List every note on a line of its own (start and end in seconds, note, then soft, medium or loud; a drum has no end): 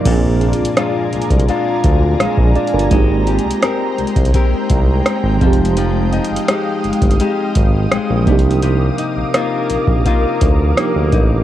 0.00 2.85 F3 medium
0.00 0.77 A#3 medium
0.00 2.86 A#3 medium
0.00 0.13 D#4 medium
0.00 0.78 F4 medium
0.05 0.53 A#1 loud
0.05 2.91 A#2 medium
0.05 2.88 C4 medium
0.05 2.17 D4 medium
0.05 2.88 F4 medium
0.05 2.88 D5 medium
0.05 2.88 G#5 medium
0.05 5.37 A#5 medium
0.05 kick medium
0.05 closed hi-hat medium
0.05 crash medium
0.11 2.19 G#4 medium
0.41 0.76 D4 medium
0.41 closed hi-hat soft
0.53 closed hi-hat medium
0.59 0.66 C2 soft
0.65 closed hi-hat medium
0.77 1.48 G#3 medium
0.77 1.48 D4 medium
0.77 1.48 F4 medium
0.77 cross-stick loud
0.77 closed hi-hat medium
1.13 1.20 C2 soft
1.13 closed hi-hat soft
1.22 closed hi-hat soft
1.30 1.46 C2 medium
1.30 kick medium
1.30 closed hi-hat medium
1.39 closed hi-hat medium
1.48 2.20 G#3 medium
1.48 2.54 D4 medium
1.48 2.99 F4 medium
1.48 closed hi-hat medium
1.84 2.16 D2 loud
1.84 kick medium
1.84 closed hi-hat medium
2.20 2.27 A#1 soft
2.20 2.91 G#3 medium
2.20 2.54 G#4 medium
2.20 2.54 F5 medium
2.20 cross-stick loud
2.20 closed hi-hat medium
2.37 2.53 A#1 medium
2.37 kick medium
2.56 2.98 D4 medium
2.56 2.73 F4 medium
2.56 2.73 D5 medium
2.56 closed hi-hat soft
2.67 closed hi-hat soft
2.74 2.89 G1 medium
2.74 3.08 D4 medium
2.74 3.08 A#4 medium
2.79 closed hi-hat soft
2.87 5.35 G#3 medium
2.87 5.36 A#3 medium
2.91 3.38 G#1 loud
2.91 6.41 G#3 medium
2.91 8.23 G#3 medium
2.91 5.38 C4 medium
2.91 5.39 D#4 medium
2.91 5.39 C5 medium
2.91 8.23 G5 medium
2.91 kick loud
2.91 closed hi-hat medium
2.97 5.40 G4 medium
3.27 3.63 G4 medium
3.27 closed hi-hat soft
3.39 closed hi-hat medium
3.45 3.52 C2 soft
3.51 closed hi-hat medium
3.62 4.34 C4 medium
3.62 4.34 G4 medium
3.62 4.34 A#4 medium
3.62 cross-stick loud
3.62 closed hi-hat medium
3.98 4.06 C2 soft
3.98 closed hi-hat soft
4.07 closed hi-hat soft
4.16 4.32 C2 medium
4.16 kick medium
4.16 closed hi-hat medium
4.25 closed hi-hat medium
4.34 5.05 C4 medium
4.34 5.80 G4 medium
4.34 5.49 A#4 medium
4.34 kick medium
4.34 closed hi-hat medium
4.70 5.01 C2 medium
4.70 kick medium
4.70 closed hi-hat medium
5.06 6.12 C4 medium
5.06 cross-stick loud
5.06 closed hi-hat medium
5.23 5.39 G#1 medium
5.37 8.21 F3 medium
5.37 8.22 G#3 medium
5.41 6.20 F1 medium
5.41 5.77 F3 medium
5.41 8.23 C4 medium
5.41 8.24 D#4 medium
5.41 8.24 F5 medium
5.41 11.44 D#6 medium
5.41 kick loud
5.41 closed hi-hat soft
5.47 8.26 G4 medium
5.53 closed hi-hat soft
5.65 closed hi-hat medium
5.77 9.02 F3 medium
5.77 closed hi-hat medium
6.13 6.49 D#4 medium
6.13 closed hi-hat soft
6.25 closed hi-hat medium
6.31 6.38 G1 soft
6.36 closed hi-hat medium
6.48 7.19 G#3 medium
6.48 7.20 D#4 medium
6.48 7.21 G4 medium
6.48 cross-stick loud
6.48 closed hi-hat medium
6.84 6.92 G1 soft
6.84 closed hi-hat soft
6.93 closed hi-hat soft
7.02 7.18 G1 medium
7.02 kick medium
7.02 closed hi-hat medium
7.11 closed hi-hat medium
7.20 7.90 G#3 medium
7.20 8.98 D#4 medium
7.20 9.35 G4 medium
7.20 closed hi-hat medium
7.55 7.87 G#1 medium
7.55 kick medium
7.55 closed hi-hat medium
7.91 7.99 A#1 soft
7.91 8.34 G#3 medium
7.91 cross-stick loud
7.91 closed hi-hat medium
8.09 8.29 A#1 medium
8.23 10.71 F3 medium
8.23 10.72 A#3 medium
8.27 8.90 C2 medium
8.27 8.62 C3 medium
8.27 10.73 D4 medium
8.27 10.75 D#4 medium
8.27 11.44 A#4 medium
8.27 11.44 F5 medium
8.27 11.44 D6 medium
8.27 kick loud
8.27 closed hi-hat soft
8.32 10.76 G4 medium
8.39 closed hi-hat soft
8.51 closed hi-hat soft
8.62 11.44 C3 medium
8.62 closed hi-hat medium
8.98 9.34 D#4 medium
8.98 closed hi-hat medium
9.16 9.23 A#1 soft
9.34 10.05 A#3 medium
9.34 10.05 D#4 medium
9.34 10.06 F4 medium
9.34 cross-stick loud
9.34 closed hi-hat medium
9.70 9.77 A#1 soft
9.70 closed hi-hat medium
9.87 10.03 A#1 medium
9.87 kick medium
10.06 10.77 A#3 medium
10.06 11.12 D#4 medium
10.06 11.44 F4 medium
10.06 kick medium
10.06 closed hi-hat medium
10.41 10.73 D2 medium
10.41 kick medium
10.41 closed hi-hat medium
10.75 11.43 F3 medium
10.75 11.44 A#3 soft
10.75 11.44 A#3 medium
10.75 11.44 D4 soft
10.75 11.44 D#4 soft
10.75 cross-stick loud
10.75 closed hi-hat medium
10.80 11.44 G4 medium
10.95 11.11 D2 medium
11.12 11.44 A1 medium
11.12 11.44 D#4 medium
11.12 kick medium
11.12 closed hi-hat soft